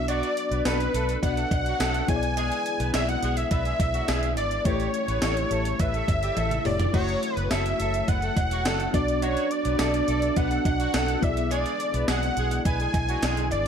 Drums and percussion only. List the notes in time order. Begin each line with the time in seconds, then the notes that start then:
0.08 closed hi-hat, cowbell
0.23 closed hi-hat
0.37 closed hi-hat
0.52 closed hi-hat
0.65 snare, closed hi-hat, tambourine, cowbell
0.80 closed hi-hat
0.94 closed hi-hat
1.09 closed hi-hat
1.23 kick, closed hi-hat, cowbell
1.37 closed hi-hat
1.51 kick, closed hi-hat, cowbell
1.66 closed hi-hat
1.80 snare, closed hi-hat, tambourine, cowbell
1.94 closed hi-hat
2.08 kick, closed hi-hat, cowbell
2.23 closed hi-hat
2.37 closed hi-hat, cowbell
2.52 closed hi-hat
2.66 closed hi-hat
2.80 closed hi-hat
2.94 snare, closed hi-hat, tambourine, cowbell
3.09 closed hi-hat
3.23 closed hi-hat
3.37 closed hi-hat
3.51 kick, closed hi-hat, cowbell
3.65 closed hi-hat
3.80 kick, closed hi-hat, cowbell
3.94 closed hi-hat
4.08 snare, closed hi-hat, tambourine, cowbell
4.23 closed hi-hat
4.37 closed hi-hat, cowbell
4.51 closed hi-hat
4.65 kick, closed hi-hat, cowbell
4.80 closed hi-hat
4.94 closed hi-hat
5.08 closed hi-hat
5.22 snare, closed hi-hat, tambourine, cowbell
5.37 closed hi-hat
5.51 closed hi-hat
5.65 closed hi-hat
5.79 kick, closed hi-hat, cowbell
5.94 closed hi-hat
6.08 kick, closed hi-hat, cowbell
6.23 closed hi-hat
6.37 closed hi-hat, high tom, cowbell
6.51 closed hi-hat, mid tom
6.65 mid tom, open hi-hat, cowbell
6.80 closed hi-hat, floor tom
6.94 kick, crash, cowbell
7.09 closed hi-hat
7.23 closed hi-hat
7.37 closed hi-hat
7.51 snare, closed hi-hat, tambourine, cowbell
7.66 closed hi-hat
7.80 closed hi-hat
7.94 closed hi-hat
8.08 kick, closed hi-hat, cowbell
8.22 closed hi-hat
8.37 kick, closed hi-hat, cowbell
8.51 closed hi-hat
8.65 snare, closed hi-hat, tambourine, cowbell
8.80 closed hi-hat
8.94 kick, closed hi-hat, cowbell
9.08 closed hi-hat
9.22 closed hi-hat, cowbell
9.37 closed hi-hat
9.51 closed hi-hat
9.65 closed hi-hat
9.79 snare, closed hi-hat, tambourine, cowbell
9.94 closed hi-hat
10.08 closed hi-hat
10.22 closed hi-hat
10.36 kick, closed hi-hat, cowbell
10.51 closed hi-hat
10.65 kick, closed hi-hat, cowbell
10.80 closed hi-hat
10.94 snare, closed hi-hat, tambourine, cowbell
11.08 closed hi-hat
11.23 kick, closed hi-hat, cowbell
11.37 closed hi-hat
11.51 closed hi-hat, cowbell
11.66 closed hi-hat
11.80 closed hi-hat
11.94 closed hi-hat
12.08 snare, closed hi-hat, tambourine, cowbell
12.23 closed hi-hat
12.37 closed hi-hat
12.51 closed hi-hat
12.65 kick, closed hi-hat, cowbell
12.80 closed hi-hat
12.94 kick, closed hi-hat, cowbell
13.09 closed hi-hat
13.22 snare, closed hi-hat, tambourine, cowbell
13.37 closed hi-hat
13.51 closed hi-hat, cowbell